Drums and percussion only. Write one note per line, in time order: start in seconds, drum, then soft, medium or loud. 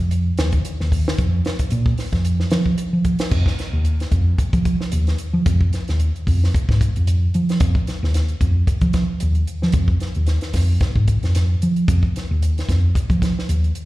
0.11 closed hi-hat medium
0.38 snare medium
0.38 closed hi-hat soft
0.52 kick medium
0.52 closed hi-hat soft
0.65 closed hi-hat medium
0.80 snare soft
0.92 kick medium
0.92 open hi-hat medium
1.08 snare medium
1.18 kick loud
1.18 closed hi-hat medium
1.45 snare medium
1.45 closed hi-hat soft
1.59 kick medium
1.59 closed hi-hat medium
1.71 closed hi-hat medium
1.86 kick medium
1.98 snare soft
1.98 open hi-hat medium
2.13 kick medium
2.13 snare soft
2.13 closed hi-hat soft
2.25 closed hi-hat medium
2.40 snare soft
2.51 snare medium
2.51 closed hi-hat medium
2.66 kick medium
2.78 closed hi-hat medium
3.05 kick medium
3.05 closed hi-hat medium
3.19 snare medium
3.19 closed hi-hat medium
3.31 kick medium
3.31 crash medium
3.46 kick medium
3.46 snare soft
3.59 snare soft
3.59 closed hi-hat soft
3.85 closed hi-hat medium
4.00 snare soft
4.00 closed hi-hat soft
4.12 kick medium
4.12 closed hi-hat medium
4.38 kick medium
4.38 closed hi-hat medium
4.53 kick medium
4.53 closed hi-hat soft
4.65 kick medium
4.65 closed hi-hat medium
4.81 snare soft
4.92 closed hi-hat medium
5.07 snare soft
5.07 closed hi-hat soft
5.18 closed hi-hat medium
5.46 kick loud
5.46 closed hi-hat medium
5.61 kick medium
5.73 snare soft
5.73 closed hi-hat soft
5.88 snare soft
5.88 closed hi-hat soft
6.00 closed hi-hat medium
6.16 closed hi-hat soft
6.27 kick medium
6.27 open hi-hat medium
6.44 snare soft
6.54 kick medium
6.54 closed hi-hat medium
6.69 kick medium
6.69 snare soft
6.81 kick medium
6.81 closed hi-hat medium
6.96 closed hi-hat soft
7.07 closed hi-hat medium
7.34 closed hi-hat medium
7.49 snare soft
7.49 closed hi-hat soft
7.60 kick loud
7.60 closed hi-hat medium
7.75 kick medium
7.87 snare soft
7.87 closed hi-hat soft
8.04 snare soft
8.14 snare soft
8.14 closed hi-hat medium
8.28 closed hi-hat soft
8.41 kick medium
8.41 closed hi-hat soft
8.67 kick medium
8.67 closed hi-hat medium
8.81 kick medium
8.81 closed hi-hat soft
8.93 kick medium
8.93 snare soft
8.93 closed hi-hat medium
9.20 closed hi-hat medium
9.35 closed hi-hat soft
9.47 closed hi-hat medium
9.62 snare soft
9.72 kick loud
9.72 closed hi-hat medium
9.88 kick medium
10.00 snare soft
10.00 closed hi-hat soft
10.15 closed hi-hat soft
10.27 snare soft
10.27 closed hi-hat medium
10.41 snare soft
10.41 closed hi-hat soft
10.53 kick medium
10.53 snare soft
10.53 open hi-hat medium
10.81 kick medium
10.81 snare soft
10.81 closed hi-hat medium
10.96 kick medium
11.08 kick medium
11.08 closed hi-hat medium
11.23 snare soft
11.23 closed hi-hat soft
11.35 snare soft
11.35 closed hi-hat medium
11.62 closed hi-hat medium
11.76 closed hi-hat soft
11.88 kick loud
11.88 closed hi-hat medium
12.03 kick medium
12.16 snare soft
12.16 closed hi-hat medium
12.42 closed hi-hat medium
12.58 snare soft
12.58 closed hi-hat soft
12.69 kick medium
12.69 snare soft
12.69 closed hi-hat medium
12.95 kick medium
12.95 closed hi-hat medium
13.10 kick medium
13.10 closed hi-hat soft
13.22 kick medium
13.22 snare soft
13.22 closed hi-hat soft
13.39 snare soft
13.49 closed hi-hat medium
13.64 closed hi-hat soft
13.75 closed hi-hat medium